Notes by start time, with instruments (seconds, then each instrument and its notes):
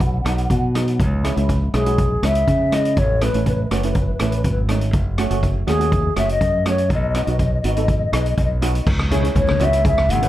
0.00 fingered electric bass B1, kick, closed hi-hat
0.06 bansuri F#5
0.13 bansuri F#5
0.21 fingered electric bass B1, bansuri F#5
0.26 steel pan F#3 B3 D#4, bansuri F#5, cross-stick, closed hi-hat
0.36 bansuri F#5, closed hi-hat
0.44 bansuri F#5
0.50 fingered electric bass B2, bansuri F#5, kick, closed hi-hat
0.58 bansuri F#5
0.75 steel pan F#3 B3 D#4, cross-stick, closed hi-hat
0.88 closed hi-hat
0.99 fingered electric bass C#2, kick, closed hi-hat
1.24 steel pan G#3 C#4 E4, cross-stick, closed hi-hat
1.37 fingered electric bass C#2, steel pan G#3 C#4 E4, closed hi-hat
1.49 kick, closed hi-hat
1.74 fingered electric bass B1, steel pan G#3 C#4 E4, bansuri G#4, cross-stick, closed hi-hat
1.86 steel pan G#3 C#4 F#4, closed hi-hat
1.98 kick, closed hi-hat
2.23 fingered electric bass C#2, steel pan G#3 C#4 E4, bansuri E5, cross-stick, closed hi-hat
2.35 closed hi-hat
2.47 fingered electric bass C#3, kick, closed hi-hat
2.72 steel pan G#3 C#4 E4, bansuri D#5, cross-stick, closed hi-hat
2.85 closed hi-hat
2.97 fingered electric bass A1, bansuri C#5, kick, closed hi-hat
3.21 steel pan A3 C#4 E4, bansuri B4, cross-stick, closed hi-hat
3.33 fingered electric bass A1, steel pan A3 C#4 E4, closed hi-hat
3.46 bansuri B4, kick, closed hi-hat
3.55 bansuri B4
3.64 bansuri B4
3.70 fingered electric bass F#1, steel pan A3 C#4 F#4, bansuri B4, cross-stick, closed hi-hat
3.77 bansuri B4
3.83 steel pan A3 C#4 E4, bansuri B4, closed hi-hat
3.91 bansuri B4, closed hi-hat
3.95 kick
4.00 bansuri B4
4.06 bansuri B4
4.13 bansuri B4
4.19 fingered electric bass A1, steel pan A3 C#4 E4, bansuri B4, cross-stick, closed hi-hat
4.29 bansuri B4, closed hi-hat
4.36 bansuri B4
4.44 fingered electric bass G#1, bansuri B4, kick, closed hi-hat
4.51 bansuri B4
4.69 steel pan A3 C#4 D#4, cross-stick, closed hi-hat
4.81 closed hi-hat
4.93 fingered electric bass F#1, kick, closed hi-hat
5.18 steel pan A3 C#4 F#4, cross-stick, closed hi-hat
5.30 fingered electric bass F#1, steel pan A3 C#4 F#4, closed hi-hat
5.43 kick, closed hi-hat
5.67 fingered electric bass D#2, steel pan A3 C#4 F#4, bansuri G#4, cross-stick, closed hi-hat
5.79 steel pan A3 C#4 F#4, closed hi-hat
5.92 kick, closed hi-hat
6.16 fingered electric bass F#1, steel pan A3 C#4 F#4, bansuri E5, cross-stick, closed hi-hat
6.29 bansuri D#5, closed hi-hat
6.41 fingered electric bass F#2, kick, closed hi-hat
6.66 steel pan A3 C#4 F#4, bansuri C#5, cross-stick, closed hi-hat
6.78 closed hi-hat
6.90 fingered electric bass B1, kick, closed hi-hat
6.94 bansuri D#5
7.01 bansuri D#5
7.09 bansuri D#5
7.15 steel pan B3 D#4 F#4, bansuri D#5, cross-stick, closed hi-hat
7.24 fingered electric bass B1, steel pan B3, bansuri D#5, closed hi-hat
7.28 steel pan D#4 F#4, bansuri D#5
7.39 bansuri D#5, kick, closed hi-hat
7.44 bansuri D#5
7.54 bansuri D#5
7.61 fingered electric bass G#1, steel pan B3, bansuri D#5, closed hi-hat
7.65 steel pan D#4 F#4, bansuri D#5
7.74 steel pan B3 D#4 A4, bansuri D#5, closed hi-hat
7.82 bansuri D#5
7.88 bansuri D#5, kick, closed hi-hat
7.98 bansuri D#5
8.05 bansuri D#5
8.12 fingered electric bass B1, steel pan B3 D#4 G#4, bansuri D#5, cross-stick, closed hi-hat
8.21 bansuri D#5
8.26 bansuri D#5, closed hi-hat
8.37 fingered electric bass B1, bansuri D#5, kick, closed hi-hat
8.44 bansuri D#5
8.62 steel pan B3 D#4 F#4, cross-stick, closed hi-hat
8.75 closed hi-hat
8.86 fingered electric bass C#2, kick, crash
8.99 cross-stick
9.11 steel pan C#4 E4 G#4, closed hi-hat, high conga
9.23 steel pan C#4 E4 G#4, closed hi-hat
9.35 fingered electric bass C#2, bansuri C#5, kick, closed hi-hat, high conga
9.47 cross-stick, high conga
9.60 fingered electric bass C#2, steel pan C#4 E4 F#4, closed hi-hat, low conga
9.64 bansuri E5
9.73 closed hi-hat
9.84 steel pan C#4 E4 G#4, bansuri E5, kick, closed hi-hat
9.98 cross-stick
10.09 fingered electric bass G#1, bansuri F#5, closed hi-hat, high conga
10.22 steel pan C#4 E4 B4, closed hi-hat